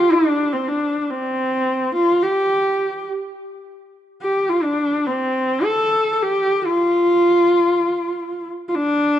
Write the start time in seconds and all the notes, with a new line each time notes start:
Already playing: F4
0.12 D4
0.53 C4
0.68 D4
1.01 D4
1.10 C4
1.94 F4
2.22 G4
4.21 G4
4.49 F4
4.63 D4
5.07 C4
5.64 A4
6.13 A4
6.22 G4
6.65 F4
8.68 F4
8.75 D4